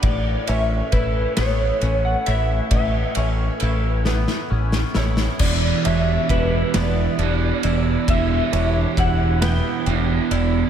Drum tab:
CC |------------|------------|x-----------|------------|
RD |x-x-x-x-x-x-|x-x-x-------|--x-x-x-x-x-|x-x-x-x-x-x-|
SD |------o-----|------oo-ooo|------o-----|------o-----|
BD |o---o-------|o-----------|o---o-------|o---o-------|